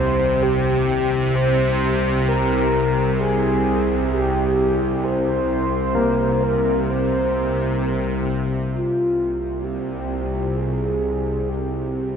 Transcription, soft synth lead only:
Already playing: C5
0.42 G4
1.35 C5
2.28 A#4
3.21 G#4
4.13 G4
5.04 C5
6.43 A#4
6.90 C5
8.73 F4
9.64 G4
10.56 G#4
11.49 G4

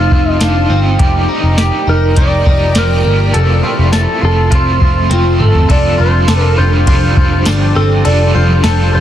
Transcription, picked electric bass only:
0.12 F1
0.41 F1
0.70 G1
1.00 F1
1.43 F1
1.87 F1
2.17 F1
2.46 F1
2.76 F1
3.06 G1
3.35 F1
3.79 F1
4.23 F1
4.52 F1
4.81 F1
5.11 F1
5.40 G1
5.70 F1
6.00 F1
6.28 F1
6.58 F1
6.87 F1
7.17 F1
7.47 G1
7.77 G1
8.06 F1
8.35 F1
8.64 F1
8.94 F1

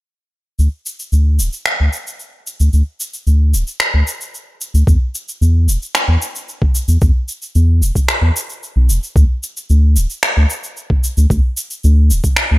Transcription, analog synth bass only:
0.59 D2
1.12 D2
1.39 D1
1.80 D2
2.60 D2
2.73 D2
3.27 D2
3.54 D1
3.94 D2
4.74 D2
4.87 E2
5.41 E2
5.68 E1
6.08 E2
6.88 E2
7.01 E2
7.55 E2
7.82 E1
8.21 E2
8.76 B1
8.89 E1
9.15 D2
9.70 D2
9.97 D1
10.37 D2
11.17 D2
11.31 D2
11.84 D2
12.11 D1
12.51 D2

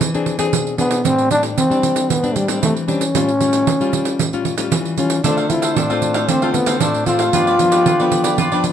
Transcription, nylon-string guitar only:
0.01 E3
0.14 C4 D4 G#4
0.39 C4 D4 G#4
0.53 B2
0.78 C4 D4 G#4
1.04 A2 G3 C4 D4
1.30 G3 C4 D4
1.57 E3
1.70 G3 C4 D4
2.09 A2
2.23 G3 C4 D4
2.48 G3 C4 D4
2.62 E3
2.88 G3 C4 D4
3.15 A2 G3 C#4 F4
3.40 G3 C#4 F4
3.81 G3 C#4 F4
4.20 A2
4.33 G3 C#4 F4
4.58 G3 C#4 F4
4.72 E3
4.98 G3 C#4 F4
5.24 D3 A3 C4 F4
5.50 A3 C4 F4
5.77 A2
5.90 A3 C4 F4
6.29 D3
6.42 A3 C4 F4
6.67 A3 C4 F4
6.81 A2
7.07 A3 C4 F4
7.34 G2 F3 B3 D4
7.59 F3 B3 D4
7.86 D3
8.00 F3 B3 D4
8.39 G2
8.52 F3 B3 D4

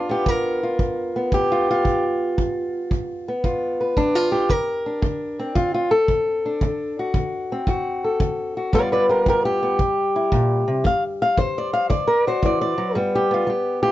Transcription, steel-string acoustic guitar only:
Already playing: G2 G3 F4
0.09 B3 G4
0.26 G2 A#4
0.63 F4
0.79 G2
1.16 B3
1.32 G2 G4
1.52 F4
1.71 F4
1.84 G2
2.38 G2
2.91 G2
3.28 B3
3.44 G2 F4
3.81 B4
3.97 G2 D4
4.15 F4
4.32 G4
4.49 D3 A#4
4.86 D4
5.02 D3
5.39 C4
5.55 D3 F4
5.74 F4
5.91 A4
6.09 D3
6.46 D4
6.63 D3
6.99 F#4
7.16 D3
7.52 C4
7.68 D3 F#4
8.04 A4
8.20 D3
8.57 F#4
8.73 G2 G3 B3 F4 B4 D5
8.92 B4 D5
9.09 F4 G4 A#4
9.27 G2 G4 A#4
9.45 G4
9.63 B3
9.79 C3
10.16 E4
10.32 A#2
10.68 C3
10.84 D3 F5
11.22 F5
11.37 D3 C5
11.58 D5
11.73 F5
11.90 D3 D5
12.07 A#4
12.27 F#4 C5
12.42 E3 D5
12.61 D5
12.78 F#3
12.95 G2 G3 B3 F4
13.15 G4
13.31 B3 F4
13.47 G3 G4
13.83 F4 G4

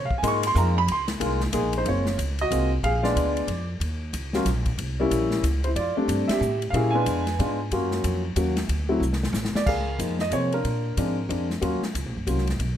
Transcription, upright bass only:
0.10 muted upright bass stroke
0.23 G#2
0.55 F2
0.88 C#2
1.20 C2
1.52 A#1
1.85 F#1
2.17 C#2
2.51 C2
2.83 A#1
3.16 D2
3.47 F2
3.80 D#2
4.13 C#2
4.45 A#1
4.78 C2
5.11 A#1
5.43 C#2
5.76 F2
5.97 muted upright bass stroke
6.08 G2
6.29 muted upright bass stroke
6.41 A2
6.73 A#2
7.06 F2
7.39 G#2
7.72 F#2
8.04 F2
8.36 D#2
8.69 D2
9.00 C2
9.33 A1
9.53 muted upright bass stroke
9.67 C#2
9.99 F2
10.31 C3
10.65 A#2
10.97 G#2
11.29 F2
11.62 D#2
11.82 muted upright bass stroke
11.95 C#2
12.06 A#1
12.17 F#1
12.27 C2
12.59 B1

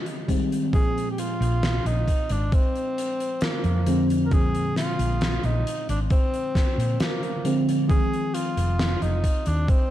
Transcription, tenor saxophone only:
0.74 G#4
1.11 G4
1.19 F4
1.87 D#4
2.32 D4
2.54 C4
3.43 A#3
4.25 A#4
4.33 G#4
4.77 F4
5.45 D#4
5.90 D4
6.11 C4
7.01 A#3
7.89 G#4
8.34 F4
9.02 D#4
9.47 D4
9.69 C4

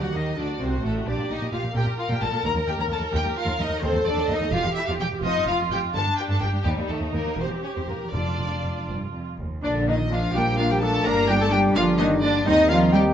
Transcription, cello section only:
0.02 F#3
0.14 D#3
0.37 D3
0.60 C3
0.83 A2
1.07 A#2
1.19 A#2
1.31 A#2
1.42 A#2
1.53 A#2
1.64 A#2
1.75 A#2
1.86 A#2
2.10 A#2
2.22 A#2
2.33 A#2
2.44 D#2
2.55 D#2
2.67 D#2
2.78 D#2
2.89 D#2
3.00 D#2
3.12 D#2
3.25 D#2
3.46 D#2
3.59 D#2
3.69 D#2
3.81 D#2
3.93 D#2
4.05 D#2
4.17 D#2
4.29 D#2
4.41 D#2
4.53 E2
4.65 E2
4.88 E2
5.00 E2
5.13 E2
5.24 F2
5.35 F2
5.48 F2
5.60 F2
5.72 F2
5.84 F2
5.94 G2
6.06 G2
6.29 G2
6.42 G2
6.53 G2
6.66 D#2
6.78 D#2
6.90 D#2
7.01 D#2
7.13 D#2
7.26 D#2
7.36 E2
7.50 E2
7.76 E2
7.89 E2
8.02 E2
8.15 F2
8.26 F2
8.39 F2
8.52 F2
8.64 F2
8.78 F2
8.90 G2
9.16 F2
9.41 D#2
9.65 D3
9.88 D#3
10.12 F3
10.35 G3
10.60 F3
10.72 G3
10.84 A3
11.08 A#3
11.31 G3
11.43 A3
11.55 G3
11.78 F3
12.00 D#3
12.22 D3
12.46 D#3
12.70 F3
12.93 G3

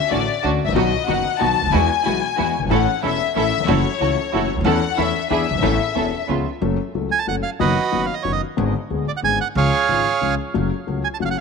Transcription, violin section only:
0.11 D5
0.65 E5
0.76 D#5
1.08 F#5
1.40 A5
1.73 G#5
2.71 F#5
3.04 E5
3.37 E5
3.69 C#5
4.66 F#5
4.98 E5
5.31 E5

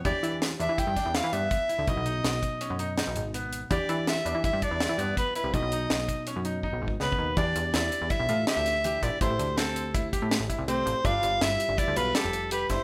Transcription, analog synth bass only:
0.05 E2
0.23 E3
0.60 E2
0.69 E3
0.87 G2
1.06 E2
1.24 E3
1.33 G2
1.78 D2
1.87 B1
1.97 B1
2.24 B1
2.70 F#2
3.07 B1
3.16 G#1
3.71 E2
3.89 E3
4.25 E2
4.35 E3
4.53 G2
4.71 E2
4.89 E3
4.98 G2
5.44 C2
5.53 B1
5.62 B1
5.91 B1
6.36 F#2
6.73 B1
6.82 G#1
7.01 C#2
7.18 D#2
7.37 E2
7.56 E2
7.74 E2
8.02 E2
8.20 B1
8.29 A2
8.57 D2
9.03 A#1
9.21 A1
9.30 A1
9.39 D2
10.22 A2
10.40 A1
10.59 C2
10.86 A1
11.04 G1
11.23 G1
11.41 G1
11.69 G1
11.88 D2
11.97 B1
12.24 F1
12.70 G1

